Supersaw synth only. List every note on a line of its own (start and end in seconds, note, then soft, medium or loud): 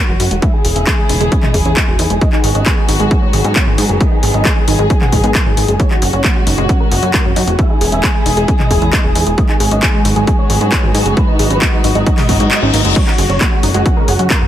0.09 0.17 F#4 medium
0.20 0.28 F#4 medium
0.31 0.40 F#4 medium
0.42 0.51 E5 loud
0.53 0.62 G#4 medium
0.65 0.73 G#4 medium
0.76 0.84 E5 medium
0.87 0.96 G#4 medium
0.98 1.07 G#4 medium
1.21 1.29 G#4 medium
1.32 1.40 G#4 medium
1.43 1.52 D#5 medium
1.54 1.63 G#4 medium
1.65 1.74 G#4 medium
1.77 1.85 D#5 medium
1.88 1.96 G#4 medium
1.99 2.08 G#4 medium
2.10 2.19 G#4 medium
2.21 2.30 D#5 medium
2.33 2.41 G#4 medium
2.44 2.52 G#4 medium
2.55 2.63 D#5 medium
2.66 2.75 G#4 medium
2.77 2.86 G#4 medium
3.00 3.08 G#4 medium
3.11 3.19 G#4 medium
3.22 3.31 C#5 medium
3.33 3.42 G#4 medium
3.45 3.53 G#4 medium
3.56 3.64 C#5 medium
3.67 3.75 G#4 medium
3.78 3.87 G#4 medium
3.89 3.98 G#4 medium
4.01 4.09 D#5 loud
4.12 4.20 G#4 medium
4.23 4.31 G#4 medium
4.34 4.43 D#5 medium
4.45 4.54 G#4 medium
4.57 4.65 G#4 medium
4.79 4.87 G#4 medium
4.90 4.99 G#4 medium
5.01 5.10 F#5 medium
5.13 5.21 G#4 medium
5.24 5.32 G#4 medium
5.35 5.43 G#5 medium
5.46 5.55 G#4 medium
5.57 5.66 G#4 medium
5.69 5.77 G#4 medium
5.80 5.88 C#5 loud
5.91 5.99 F#4 medium
6.02 6.11 F#4 medium
6.13 6.22 C#5 medium
6.24 6.33 F#4 medium
6.36 6.44 F#4 medium
6.58 6.66 F#4 medium
6.69 6.78 F#4 medium
6.80 6.89 A#4 medium
6.92 7.00 F#4 medium
7.03 7.11 F#4 medium
7.14 7.22 A#4 medium
7.25 7.34 F#4 medium
7.36 7.45 F#4 medium
7.48 7.56 F#4 medium
7.59 7.67 E5 loud
7.70 7.78 G#4 medium
7.81 7.90 G#4 medium
7.92 8.01 E5 medium
8.04 8.12 G#4 medium
8.15 8.23 G#4 medium
8.37 8.46 G#4 medium
8.48 8.57 G#4 medium
8.60 8.68 D#5 medium
8.71 8.79 G#4 medium
8.82 8.90 G#4 medium
8.93 9.02 D#5 medium
9.04 9.13 G#4 medium
9.15 9.24 G#4 medium
9.27 9.35 G#4 medium
9.38 9.46 D#5 loud
9.49 9.58 G#4 medium
9.60 9.69 G#4 medium
9.72 9.80 D#5 medium
9.83 9.91 G#4 medium
9.94 10.02 G#4 medium
10.16 10.25 G#4 medium
10.28 10.36 G#4 medium
10.39 10.47 C#5 medium
10.50 10.58 G#4 medium
10.61 10.70 G#4 medium
10.72 10.81 C#5 medium
10.83 10.92 G#4 medium
10.95 11.03 G#4 medium
11.06 11.14 G#4 medium
11.17 11.25 B4 loud
11.28 11.37 D#4 medium
11.39 11.48 D#4 medium
11.51 11.59 B4 medium
11.62 11.70 D#4 medium
11.73 11.81 D#4 medium
11.95 12.04 D#4 medium
12.06 12.15 D#4 medium
12.18 12.26 D#5 medium
12.29 12.37 D#4 medium
12.40 12.49 D#4 medium
12.51 12.60 D#5 medium
12.62 12.71 D#4 medium
12.74 12.82 D#4 medium
12.85 12.93 D#4 medium
12.96 13.05 C#5 loud
13.07 13.16 F#4 medium
13.18 13.27 F#4 medium
13.30 13.38 C#5 medium
13.41 13.49 F#4 medium
13.52 13.60 F#4 medium
13.74 13.83 F#4 medium
13.86 13.94 F#4 medium
13.97 14.05 A#4 loud
14.08 14.17 F#4 medium
14.19 14.28 F#4 medium
14.30 14.39 A#4 medium
14.42 14.48 F#4 medium